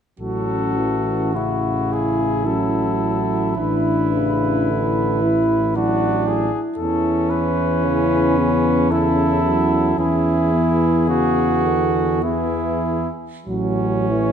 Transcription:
0.19 3.53 A1 soft
0.19 0.78 F#3 soft
0.19 1.36 C#4 soft
0.19 1.37 F#4 soft
0.19 1.30 A4 soft
0.76 1.35 E3 soft
1.34 2.46 C#3 soft
1.34 2.47 E4 soft
1.34 5.75 E4 soft
1.34 1.94 F#4 soft
1.93 2.48 G#4 soft
2.45 3.58 F#3 soft
2.45 3.57 C#4 soft
2.45 3.57 A4 soft
3.57 6.49 A1 soft
3.57 4.13 E3 soft
3.57 4.71 D4 soft
3.57 5.77 B4 soft
4.13 4.70 C#3 soft
4.68 5.23 D3 soft
4.68 7.58 E4 soft
5.22 5.77 E3 soft
5.76 6.53 F#3 soft
5.76 6.52 D4 soft
5.76 6.29 F#4 soft
6.27 6.61 G#4 soft
6.77 9.94 E2 soft
6.77 7.86 E3 soft
6.77 8.93 C#4 soft
6.77 7.32 A4 soft
7.30 8.92 B4 soft
7.84 8.90 C#3 soft
7.84 8.39 E4 soft
8.38 8.93 B3 soft
8.90 9.43 C#3 soft
8.90 9.97 C#4 soft
8.90 9.98 E4 soft
8.90 9.99 A4 soft
9.44 10.00 F#3 soft
9.98 13.07 E2 soft
9.98 11.09 E3 soft
9.98 10.54 C#4 soft
9.98 11.06 E4 soft
9.98 12.22 G#4 soft
10.53 12.22 B3 soft
11.07 11.66 C#3 soft
11.07 12.21 F#4 soft
11.64 12.24 D3 soft
12.23 13.11 E3 soft
12.23 13.10 B3 soft
12.23 13.10 E4 soft
12.23 13.10 G#4 soft
13.46 14.32 A1 soft
13.46 14.12 F#3 soft
13.46 14.32 C#4 soft
14.10 14.32 E3 soft
14.10 14.32 E4 soft
14.10 14.32 C#5 soft

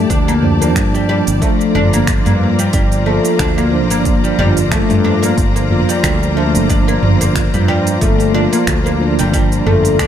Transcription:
0.00 0.43 F3 medium
0.00 0.43 A#3 medium
0.00 0.44 D4 loud
0.00 1.38 G4 medium
0.00 10.07 D5 medium
0.00 1.38 A5 medium
0.10 0.76 D2 medium
0.10 0.27 D4 loud
0.10 kick loud
0.10 open hi-hat medium
0.10 shaker medium
0.28 0.42 A#3 loud
0.28 open hi-hat soft
0.28 shaker soft
0.43 0.57 F3 medium
0.43 0.57 A#3 medium
0.43 0.58 D4 medium
0.43 mid tom medium
0.60 1.38 F3 medium
0.60 0.93 A#3 medium
0.60 1.40 D4 medium
0.60 open hi-hat soft
0.60 shaker medium
0.76 1.21 G2 medium
0.76 finger snap loud
0.76 kick loud
0.76 open hi-hat medium
0.76 shaker medium
0.94 1.08 G3 medium
0.94 shaker soft
1.09 1.41 G3 loud
1.27 1.39 G1 loud
1.27 open hi-hat soft
1.27 shaker medium
1.41 3.03 F3 medium
1.41 1.73 A3 medium
1.41 3.04 D4 medium
1.41 10.07 F4 medium
1.41 10.07 C5 medium
1.41 10.07 A#5 medium
1.41 kick loud
1.41 open hi-hat soft
1.41 shaker medium
1.61 shaker soft
1.75 2.20 G1 loud
1.75 1.92 D4 loud
1.75 mid tom medium
1.93 2.07 A#3 loud
1.93 open hi-hat soft
1.93 shaker medium
2.07 finger snap loud
2.07 kick loud
2.07 open hi-hat medium
2.07 shaker medium
2.26 2.69 G2 medium
2.26 2.57 A#3 medium
2.26 mid tom medium
2.26 open hi-hat soft
2.26 shaker soft
2.59 2.72 G3 medium
2.59 open hi-hat soft
2.59 shaker medium
2.73 3.18 G1 medium
2.73 3.05 G3 loud
2.73 kick loud
2.73 open hi-hat medium
2.73 shaker medium
2.92 open hi-hat soft
2.92 shaker soft
3.06 3.26 F3 medium
3.06 3.38 A3 medium
3.06 3.27 A#3 medium
3.06 3.27 F4 medium
3.25 open hi-hat soft
3.25 shaker medium
3.39 3.91 D2 loud
3.39 3.56 D4 loud
3.39 finger snap loud
3.39 kick loud
3.39 open hi-hat medium
3.39 shaker medium
3.58 3.72 A#3 medium
3.58 shaker soft
3.71 3.85 F3 medium
3.71 3.85 A#3 medium
3.71 3.86 D4 loud
3.90 4.33 G1 medium
3.90 4.22 A#3 medium
3.90 open hi-hat soft
3.90 shaker medium
4.03 5.66 F3 medium
4.03 kick loud
4.03 open hi-hat medium
4.03 shaker medium
4.07 5.68 D4 medium
4.24 4.38 G3 medium
4.24 shaker soft
4.38 4.83 G1 loud
4.38 4.70 G3 loud
4.38 mid tom medium
4.57 open hi-hat soft
4.57 shaker medium
4.71 5.03 A3 medium
4.71 finger snap medium
4.71 kick loud
4.71 open hi-hat medium
4.71 shaker medium
4.90 5.32 G2 medium
4.90 mid tom medium
4.90 open hi-hat soft
4.90 shaker soft
5.04 5.21 D4 loud
5.23 5.37 A#3 loud
5.23 open hi-hat soft
5.23 shaker medium
5.38 5.82 G1 medium
5.38 kick loud
5.38 open hi-hat medium
5.38 shaker medium
5.56 5.87 A#3 medium
5.56 open hi-hat soft
5.56 shaker soft
5.70 5.90 F3 medium
5.70 5.90 A#3 medium
5.70 5.91 F4 loud
5.70 mid tom medium
5.89 6.02 G3 medium
5.89 open hi-hat soft
5.89 shaker medium
6.04 6.56 D2 loud
6.04 6.35 G3 loud
6.04 finger snap loud
6.04 kick loud
6.04 open hi-hat medium
6.04 shaker medium
6.23 shaker soft
6.36 6.49 F3 medium
6.36 6.68 A3 medium
6.36 6.49 A#3 medium
6.36 6.49 D4 medium
6.55 6.97 G1 medium
6.55 open hi-hat soft
6.55 shaker medium
6.67 8.30 F3 medium
6.67 6.86 D4 loud
6.67 kick loud
6.67 open hi-hat medium
6.67 shaker soft
6.72 8.32 D4 medium
6.88 7.02 A#3 loud
6.88 shaker soft
7.03 7.47 G1 medium
7.03 mid tom medium
7.21 7.52 A#3 medium
7.21 open hi-hat soft
7.21 shaker medium
7.36 finger snap loud
7.36 kick loud
7.36 open hi-hat medium
7.36 shaker soft
7.54 7.96 G2 medium
7.54 7.67 G3 medium
7.54 mid tom medium
7.54 open hi-hat soft
7.54 shaker soft
7.68 8.00 G3 loud
7.87 open hi-hat soft
7.87 shaker medium
8.01 8.46 G1 medium
8.01 8.33 A3 medium
8.01 kick loud
8.01 open hi-hat medium
8.01 shaker medium
8.20 open hi-hat soft
8.20 shaker soft
8.33 8.53 F3 medium
8.33 8.54 A#3 medium
8.33 8.51 D4 loud
8.33 8.54 F4 loud
8.53 8.66 A#3 loud
8.53 open hi-hat soft
8.53 shaker medium
8.67 9.20 D2 loud
8.67 finger snap loud
8.67 kick loud
8.67 open hi-hat medium
8.67 shaker medium
8.86 9.17 A#3 medium
8.86 shaker soft
8.99 9.12 F3 medium
8.99 9.13 A#3 medium
8.99 9.13 D4 loud
9.19 9.61 G1 medium
9.19 9.32 G3 medium
9.19 open hi-hat soft
9.19 shaker medium
9.31 10.07 F3 medium
9.31 9.65 G3 loud
9.31 10.07 D4 medium
9.31 kick loud
9.31 open hi-hat medium
9.31 shaker medium
9.52 open hi-hat soft
9.52 shaker soft
9.66 10.07 G1 loud
9.66 9.98 A3 medium
9.66 mid tom medium
9.85 open hi-hat soft
9.85 shaker medium
9.99 10.07 D4 loud
9.99 finger snap loud
9.99 kick loud
9.99 open hi-hat medium
9.99 shaker medium

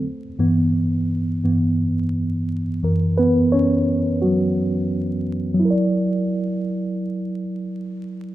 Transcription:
0.39 1.40 G2 medium
0.39 1.40 E3 medium
0.39 1.40 B3 medium
1.44 1.75 G2 soft
1.44 1.76 E3 soft
1.44 1.76 B3 soft
2.83 5.58 F#2 medium
2.83 5.58 E3 soft
2.83 5.59 A#4 medium
3.18 3.51 B3 medium
3.18 3.54 B4 medium
3.52 4.19 C#4 medium
3.52 4.24 C#5 medium
4.22 5.24 F#3 medium
4.22 5.23 F#4 medium
5.54 8.35 F#3 medium
5.60 8.35 E4 medium
5.65 8.35 A#4 medium
5.70 8.35 D5 medium

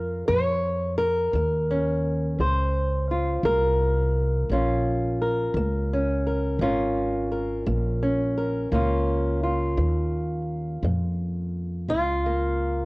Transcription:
0.00 0.25 F2 medium
0.00 2.40 F4 soft
0.00 0.27 A#4 loud
0.28 1.31 F2 medium
0.28 0.92 A#2 medium
0.28 0.97 C#5 loud
0.98 2.39 A#4 medium
1.33 2.36 D#2 medium
1.33 1.98 A#3 medium
1.71 4.52 C#4 soft
2.39 3.41 C#2 medium
2.39 3.03 A#2 medium
2.39 3.44 C5 medium
3.11 4.53 F4 soft
3.43 4.46 C2 medium
3.43 4.08 A#3 medium
3.43 5.21 A#4 medium
4.50 5.52 A#1 medium
4.50 5.14 A#2 medium
4.50 5.93 C#4 soft
4.50 6.62 F4 soft
5.22 6.26 A#4 soft
5.54 6.57 C#2 medium
5.54 6.19 A#3 medium
5.93 6.61 C#4 soft
6.27 6.62 A#4 soft
6.59 7.63 G#1 medium
6.59 7.25 A#2 medium
6.59 8.01 C#4 soft
6.59 8.69 F4 soft
6.59 7.31 A#4 soft
7.32 8.37 A#4 soft
7.67 8.69 A#1 medium
7.67 8.30 A#3 medium
8.03 8.68 C#4 soft
8.37 8.74 A#4 soft
8.72 9.75 C#2 medium
8.72 9.36 A#2 medium
8.72 12.25 A#3 soft
8.72 12.85 C#4 soft
8.72 9.42 F4 soft
9.43 11.89 F4 soft
9.77 10.80 D#2 medium
9.77 10.41 F3 medium
10.83 11.86 F2 medium
10.83 11.48 A#2 medium
11.89 12.85 C#2 medium
11.89 12.53 F3 medium
11.89 12.85 F4 medium
12.26 12.85 A#3 soft

